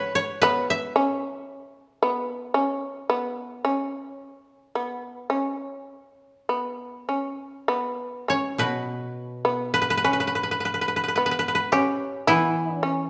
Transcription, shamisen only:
0.00 0.43 C#4 medium
0.43 0.95 B3 medium
0.96 2.02 C#4 medium
2.03 2.54 B3 medium
2.54 3.09 C#4 medium
3.10 3.64 B3 medium
3.65 4.75 C#4 medium
4.75 5.29 B3 medium
5.30 6.49 C#4 medium
6.49 7.08 B3 medium
7.09 7.68 C#4 medium
7.68 8.28 B3 medium
8.28 9.44 C#4 medium
9.45 10.03 B3 medium
10.05 11.17 C#4 medium
11.18 11.72 B3 medium
11.73 12.27 C#4 medium
12.27 12.82 B3 medium
12.83 13.10 C#4 medium

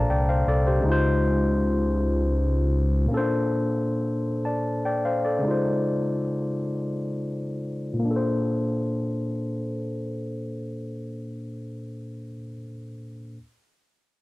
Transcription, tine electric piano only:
0.00 0.77 A#2 medium
0.00 0.79 A#3 medium
0.00 0.80 D4 medium
0.00 0.48 A4 medium
0.00 0.30 C5 medium
0.00 0.11 D5 soft
0.00 0.29 F5 soft
0.00 0.85 A5 medium
0.00 0.86 A#5 medium
0.10 0.27 D5 medium
0.10 0.27 G5 medium
0.29 0.46 C5 soft
0.29 0.46 F5 medium
0.48 0.65 A4 medium
0.48 0.65 D5 medium
0.67 1.02 G4 soft
0.67 0.90 C5 medium
0.80 3.04 C#3 medium
0.80 3.06 G#3 medium
0.86 3.07 D#4 medium
0.86 3.09 F4 medium
0.92 3.10 C5 medium
3.06 5.37 A#2 medium
3.06 5.38 A#3 medium
3.11 3.17 C#4 soft
3.11 4.24 A4 medium
3.17 5.43 D4 medium
3.17 4.26 C5 medium
4.45 4.82 D5 soft
4.45 4.82 A5 soft
4.85 5.03 D5 medium
4.85 5.03 G5 medium
5.05 5.23 C5 soft
5.05 5.23 F5 medium
5.25 5.62 A4 soft
5.25 5.62 D5 soft
5.39 7.98 C#3 medium
5.39 7.99 G#3 medium
5.45 8.00 D#4 medium
5.45 8.02 F4 medium
5.51 8.03 C5 medium
7.93 12.23 A#2 medium
7.99 12.29 A#3 medium
8.05 12.33 D4 medium
8.11 12.36 A4 medium
8.16 12.39 C5 medium

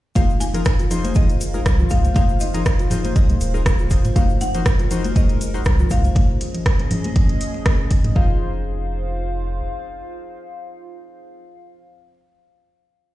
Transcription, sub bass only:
0.16 1.61 F1 loud
1.66 1.84 C2 loud
1.91 2.09 C2 medium
2.16 3.17 F1 loud
3.16 3.34 C2 medium
3.41 3.98 D#1 loud
4.16 5.61 F1 loud
5.66 5.84 C2 loud
5.91 6.09 C2 medium
8.16 9.62 F1 loud

